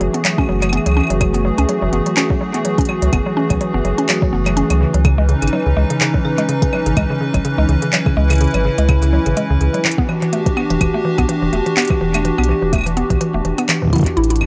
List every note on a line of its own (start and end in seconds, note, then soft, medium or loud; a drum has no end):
0.00 0.09 F#1 medium
0.00 14.46 E3 medium
0.00 0.11 F#3 medium
0.00 4.77 A3 medium
0.00 4.77 F#4 medium
0.00 4.77 G#4 medium
0.00 closed hi-hat soft
0.14 0.19 B3 medium
0.14 closed hi-hat medium
0.25 0.35 F#3 medium
0.25 clap loud
0.25 closed hi-hat medium
0.38 0.43 C#4 loud
0.38 kick loud
0.38 claves soft
0.41 claves soft
0.44 claves soft
0.46 0.79 F#1 loud
0.46 0.59 F#3 medium
0.46 claves soft
0.56 claves soft
0.59 0.70 F#3 medium
0.59 closed hi-hat medium
0.59 claves soft
0.62 claves medium
0.62 shaker medium
0.69 0.79 B3 medium
0.69 closed hi-hat medium
0.69 claves medium
0.77 claves medium
0.86 1.01 C#2 medium
0.86 0.94 F#3 medium
0.86 closed hi-hat medium
0.86 claves soft
0.89 claves soft
0.91 claves soft
0.94 1.03 C#4 loud
0.94 claves soft
0.97 claves soft
1.00 claves soft
1.03 claves soft
1.07 1.51 F#1 loud
1.07 1.18 F#3 medium
1.07 closed hi-hat medium
1.07 claves soft
1.21 1.31 F#3 medium
1.21 kick loud
1.21 closed hi-hat medium
1.21 claves medium
1.34 1.39 B3 medium
1.34 shaker medium
1.45 1.55 F#3 medium
1.58 1.65 C#2 medium
1.58 1.63 C#4 loud
1.58 closed hi-hat medium
1.58 claves soft
1.69 1.79 F#3 medium
1.69 closed hi-hat medium
1.82 1.89 F#1 loud
1.82 1.90 F#3 medium
1.93 2.01 F#1 medium
1.93 1.99 B3 medium
1.93 closed hi-hat soft
2.06 2.14 F#3 medium
2.06 closed hi-hat medium
2.17 2.23 C#4 loud
2.17 clap loud
2.17 closed hi-hat medium
2.30 2.38 F#3 medium
2.30 kick loud
2.41 2.51 F#3 medium
2.54 2.59 B3 medium
2.54 closed hi-hat medium
2.65 2.75 F#3 medium
2.65 closed hi-hat medium
2.78 2.83 C#4 loud
2.78 kick loud
2.78 closed hi-hat medium
2.81 closed hi-hat medium
2.85 2.99 F#3 medium
2.85 closed hi-hat soft
2.85 claves medium
3.02 3.09 C#2 medium
3.02 3.10 F#3 medium
3.02 closed hi-hat medium
3.13 3.21 F#1 loud
3.13 3.19 B3 medium
3.13 kick loud
3.13 closed hi-hat medium
3.13 claves medium
3.26 3.34 F#3 medium
3.37 3.43 C#4 loud
3.50 3.57 C#2 medium
3.50 3.58 F#3 medium
3.50 kick medium
3.50 closed hi-hat medium
3.50 claves soft
3.61 3.71 F#3 medium
3.61 closed hi-hat medium
3.74 3.81 F#1 loud
3.74 3.79 B3 medium
3.85 3.93 F#1 medium
3.85 3.95 F#3 medium
3.85 closed hi-hat soft
3.98 4.03 C#4 loud
3.98 closed hi-hat medium
4.09 4.19 F#3 medium
4.09 clap loud
4.09 closed hi-hat medium
4.22 4.30 F#3 medium
4.22 kick loud
4.33 4.63 F#1 loud
4.33 4.39 B3 medium
4.46 4.54 F#3 medium
4.46 closed hi-hat medium
4.46 claves medium
4.46 shaker medium
4.57 4.63 C#4 loud
4.57 closed hi-hat medium
4.70 4.85 C#2 medium
4.70 4.78 F#3 medium
4.70 closed hi-hat medium
4.70 claves medium
4.81 4.91 C#3 medium
4.81 9.81 C#4 medium
4.81 7.66 D#4 medium
4.81 9.81 B4 medium
4.94 5.35 C#2 loud
4.94 4.99 F#3 medium
4.94 closed hi-hat medium
5.05 5.15 C#3 medium
5.05 kick loud
5.05 closed hi-hat medium
5.05 claves medium
5.18 5.23 G#3 loud
5.29 5.39 C#3 medium
5.29 closed hi-hat soft
5.42 5.49 G#1 medium
5.42 5.50 C#3 medium
5.42 closed hi-hat medium
5.42 claves soft
5.47 closed hi-hat medium
5.47 claves soft
5.53 5.59 F#3 medium
5.53 claves soft
5.60 claves soft
5.66 5.73 C#2 loud
5.66 5.74 C#3 medium
5.77 5.85 C#2 medium
5.77 5.83 G#3 loud
5.90 5.98 C#3 medium
5.90 closed hi-hat medium
6.01 6.11 C#3 medium
6.01 clap loud
6.01 closed hi-hat medium
6.14 6.19 F#3 medium
6.14 kick loud
6.25 6.35 C#3 medium
6.25 claves soft
6.38 6.43 G#3 loud
6.38 closed hi-hat medium
6.49 6.59 C#3 medium
6.49 closed hi-hat medium
6.62 6.70 C#3 medium
6.62 kick loud
6.62 closed hi-hat medium
6.73 6.79 F#3 medium
6.73 claves medium
6.86 6.93 G#1 medium
6.86 6.94 C#3 medium
6.86 closed hi-hat medium
6.97 7.05 C#2 loud
6.97 7.03 G#3 loud
6.97 kick loud
6.97 closed hi-hat medium
6.97 claves medium
7.10 7.18 C#3 medium
7.21 7.31 C#3 medium
7.34 7.41 G#1 medium
7.34 7.39 F#3 medium
7.34 kick medium
7.34 closed hi-hat medium
7.34 claves soft
7.45 7.55 C#3 medium
7.45 closed hi-hat medium
7.58 7.65 C#2 loud
7.58 7.63 G#3 loud
7.69 7.77 C#2 medium
7.69 7.79 C#3 medium
7.69 9.83 E4 medium
7.69 closed hi-hat soft
7.82 7.90 C#3 medium
7.82 closed hi-hat medium
7.93 7.99 F#3 medium
7.93 clap loud
7.93 closed hi-hat medium
8.06 8.14 C#3 medium
8.06 kick loud
8.06 claves soft
8.17 8.47 C#2 loud
8.17 8.23 G#3 loud
8.30 8.38 C#3 medium
8.30 closed hi-hat soft
8.30 claves medium
8.30 shaker medium
8.33 closed hi-hat soft
8.35 closed hi-hat soft
8.38 closed hi-hat soft
8.41 8.51 C#3 medium
8.41 closed hi-hat medium
8.44 closed hi-hat soft
8.47 closed hi-hat soft
8.51 closed hi-hat soft
8.54 8.69 G#1 medium
8.54 8.59 F#3 medium
8.54 closed hi-hat medium
8.54 claves medium
8.65 8.75 C#3 medium
8.78 9.19 C#2 loud
8.78 8.83 G#3 loud
8.78 closed hi-hat medium
8.89 8.99 C#3 medium
8.89 kick loud
8.89 closed hi-hat medium
8.89 claves medium
9.02 9.10 C#3 medium
9.02 shaker medium
9.13 9.19 F#3 medium
9.26 9.33 G#1 medium
9.26 9.34 C#3 medium
9.26 closed hi-hat medium
9.37 9.43 G#3 loud
9.37 closed hi-hat medium
9.50 9.57 C#2 loud
9.50 9.58 C#3 medium
9.61 9.69 C#2 medium
9.61 9.71 C#3 medium
9.61 closed hi-hat soft
9.74 9.79 F#3 medium
9.74 closed hi-hat medium
9.85 9.95 E3 medium
9.85 14.46 D4 medium
9.85 14.46 F#4 medium
9.85 14.46 G4 medium
9.85 clap loud
9.91 closed hi-hat medium
9.98 10.03 B3 loud
9.98 kick loud
10.09 10.19 E3 medium
10.09 claves soft
10.22 10.30 E3 medium
10.22 closed hi-hat soft
10.33 10.39 A3 medium
10.33 closed hi-hat medium
10.46 10.54 E3 medium
10.46 kick loud
10.46 closed hi-hat medium
10.57 10.63 B3 loud
10.57 claves medium
10.70 10.77 E1 medium
10.70 10.78 E3 medium
10.70 closed hi-hat medium
10.81 10.89 E1 loud
10.81 10.91 E3 medium
10.81 kick loud
10.81 closed hi-hat medium
10.81 claves medium
10.94 10.99 A3 medium
11.05 11.15 E3 medium
11.18 11.25 B1 medium
11.18 11.23 B3 loud
11.18 kick medium
11.18 closed hi-hat medium
11.18 claves soft
11.29 11.39 E3 medium
11.29 closed hi-hat medium
11.42 11.49 E1 loud
11.42 11.50 E3 medium
11.53 11.61 E1 medium
11.53 11.59 A3 medium
11.53 closed hi-hat soft
11.66 11.74 E3 medium
11.66 closed hi-hat medium
11.77 11.83 B3 loud
11.77 clap loud
11.77 closed hi-hat soft
11.79 closed hi-hat soft
11.82 closed hi-hat soft
11.85 closed hi-hat soft
11.88 11.98 E3 medium
11.88 kick loud
11.88 closed hi-hat medium
11.88 claves soft
12.01 12.31 E1 loud
12.01 12.11 E3 medium
12.14 12.19 A3 medium
12.14 closed hi-hat medium
12.14 claves medium
12.14 shaker medium
12.25 12.35 E3 medium
12.25 closed hi-hat medium
12.38 12.53 B1 medium
12.38 12.43 B3 loud
12.38 claves medium
12.44 closed hi-hat medium
12.49 12.59 E3 medium
12.62 13.03 E1 loud
12.62 12.70 E3 medium
12.73 12.79 A3 medium
12.73 kick loud
12.73 closed hi-hat medium
12.73 claves soft
12.76 claves soft
12.78 claves medium
12.81 claves medium
12.84 12.94 E3 medium
12.84 claves medium
12.84 shaker medium
12.97 13.03 B3 loud
12.97 closed hi-hat soft
13.10 13.17 B1 medium
13.10 13.18 E3 medium
13.10 kick medium
13.10 closed hi-hat medium
13.21 13.31 E3 medium
13.21 closed hi-hat medium
13.34 13.41 E1 loud
13.34 13.39 A3 medium
13.45 13.53 E1 medium
13.45 13.55 E3 medium
13.45 closed hi-hat soft
13.58 13.63 B3 loud
13.58 closed hi-hat medium
13.58 claves soft
13.69 13.79 E3 medium
13.69 clap loud
13.69 closed hi-hat medium
13.82 13.90 E3 medium
13.82 kick medium
13.85 kick medium
13.88 kick medium
13.90 kick medium
13.93 13.99 E4 medium
13.93 kick medium
13.93 closed hi-hat soft
13.93 claves soft
13.96 kick medium
13.96 closed hi-hat soft
13.98 kick loud
13.98 kick medium
13.98 closed hi-hat soft
14.01 kick loud
14.01 closed hi-hat soft
14.04 14.14 E2 medium
14.04 closed hi-hat soft
14.06 closed hi-hat medium
14.17 14.42 A1 loud
14.17 14.27 E4 loud
14.17 closed hi-hat soft
14.24 closed hi-hat soft
14.30 14.38 E4 medium
14.30 closed hi-hat medium
14.36 closed hi-hat medium
14.41 14.46 D1 loud
14.41 14.46 E2 medium
14.41 claves medium